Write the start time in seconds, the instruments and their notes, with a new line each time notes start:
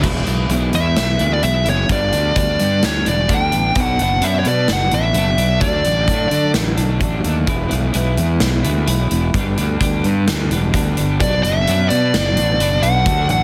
0.02 fingered electric bass E1, clean electric guitar E3 G#3 B3 E4, kick, crash
0.25 fingered electric bass B1, clean electric guitar G#3 B3 E4, closed hi-hat
0.49 fingered electric bass B1, clean electric guitar E3 G#3 B3 E4, closed hi-hat
0.73 fingered electric bass E2, lead electric guitar E5, closed hi-hat
0.96 fingered electric bass B1, snare, closed hi-hat
1.18 fingered electric bass D2, clean electric guitar G#3 B3 E4, closed hi-hat
1.33 lead electric guitar D5
1.42 fingered electric bass B1, clean electric guitar E3 G#3 B3 E4, lead electric guitar E5, closed hi-hat
1.65 fingered electric bass F#1, clean electric guitar G#3 B3 E4, closed hi-hat
1.69 lead electric guitar C#5
1.89 fingered electric bass G1, clean electric guitar G2 D3 G3 B3 D4, lead electric guitar D5, kick, closed hi-hat
2.12 fingered electric bass D2, clean electric guitar G3 B3 D4, closed hi-hat
2.35 fingered electric bass D2, clean electric guitar G2 D3 G3 B3 D4, lead electric guitar D5, kick, closed hi-hat
2.59 fingered electric bass G2, closed hi-hat
2.83 fingered electric bass D2, lead electric guitar C#5, snare, closed hi-hat
3.05 fingered electric bass E1, clean electric guitar G3 B3 D4, lead electric guitar D5, closed hi-hat
3.28 fingered electric bass D2, clean electric guitar D3 G3 B3 D4, kick, closed hi-hat
3.35 lead electric guitar G5
3.51 fingered electric bass A1, clean electric guitar G3 B3 D4, closed hi-hat
3.74 fingered electric bass B1, clean electric guitar B2 F#3 B3 D4, kick, closed hi-hat
3.80 lead electric guitar F#5
3.98 fingered electric bass F#1, clean electric guitar F#3 B3 D4, closed hi-hat
4.02 lead electric guitar F#5
4.21 fingered electric bass F#2, clean electric guitar B2 F#3 B3 D4, lead electric guitar E5, closed hi-hat
4.39 lead electric guitar C#5
4.45 fingered electric bass B2, lead electric guitar D5, closed hi-hat
4.68 fingered electric bass F#1, snare, closed hi-hat
4.73 lead electric guitar F#5
4.91 fingered electric bass A1, clean electric guitar F#3 B3 D4, lead electric guitar E5, closed hi-hat
5.14 fingered electric bass F#1, clean electric guitar B2 F#3 B3, closed hi-hat
5.18 clean electric guitar D4
5.38 fingered electric bass B1, clean electric guitar B3 D4, closed hi-hat
5.42 clean electric guitar F#3
5.61 fingered electric bass D2, clean electric guitar D3 F#3 A3 D4, lead electric guitar D5, kick, closed hi-hat
5.84 fingered electric bass A1, clean electric guitar F#3 A3 D4, closed hi-hat
6.07 fingered electric bass A2, clean electric guitar D3 F#3 A3 D4, kick, closed hi-hat
6.31 fingered electric bass D3, closed hi-hat
6.54 fingered electric bass A1, snare, closed hi-hat
6.77 fingered electric bass B1, clean electric guitar F#3 A3 D4, closed hi-hat
7.00 fingered electric bass A1, clean electric guitar D3 F#3 A3 D4, kick, closed hi-hat
7.23 fingered electric bass D#2, clean electric guitar F#3 A3 D4, closed hi-hat
7.47 fingered electric bass E1, clean electric guitar E3 G#3 B3 E4, kick, closed hi-hat
7.70 fingered electric bass B1, clean electric guitar G#3 B3 E4, closed hi-hat
7.93 fingered electric bass B1, clean electric guitar E3 G#3 B3 E4, closed hi-hat
8.17 fingered electric bass E2, closed hi-hat
8.40 fingered electric bass B1, snare, closed hi-hat
8.63 fingered electric bass D2, clean electric guitar G#3 B3 E4, closed hi-hat
8.86 fingered electric bass B1, clean electric guitar E3 G#3 B3 E4, closed hi-hat
9.10 fingered electric bass E1, clean electric guitar G#3 B3 E4, closed hi-hat
9.33 fingered electric bass G1, clean electric guitar G2 D3 G3 B3 D4, kick, closed hi-hat
9.55 fingered electric bass D2, clean electric guitar G3 B3 D4, closed hi-hat
9.79 fingered electric bass D2, clean electric guitar G2 D3 G3 B3 D4, kick, closed hi-hat
10.04 fingered electric bass G2, closed hi-hat
10.27 fingered electric bass D2, snare, closed hi-hat
10.50 fingered electric bass E1, clean electric guitar G3 B3 D4, closed hi-hat
10.73 fingered electric bass D2, clean electric guitar D3 G3 B3 D4, kick, closed hi-hat
10.97 fingered electric bass G1, clean electric guitar G3 B3 D4, closed hi-hat
11.20 fingered electric bass B1, clean electric guitar B2 F#3 B3 D4, lead electric guitar D5, kick, closed hi-hat
11.43 fingered electric bass F#1, clean electric guitar F#3 B3 D4, lead electric guitar E5, closed hi-hat
11.67 fingered electric bass F#2, clean electric guitar B2 F#3 B3 D4, closed hi-hat
11.89 fingered electric bass B2, lead electric guitar D5, closed hi-hat
12.14 fingered electric bass F#1, snare, closed hi-hat
12.36 fingered electric bass A1, clean electric guitar F#3 B3 D4, closed hi-hat
12.59 fingered electric bass F#1, clean electric guitar B2 F#3 B3 D4, closed hi-hat
12.82 fingered electric bass B1, clean electric guitar F#3 B3 D4, lead electric guitar F#5, closed hi-hat
13.06 fingered electric bass D2, clean electric guitar D3 F#3 A3 D4, kick, closed hi-hat
13.29 fingered electric bass A1, clean electric guitar F#3 A3 D4, lead electric guitar F#5, closed hi-hat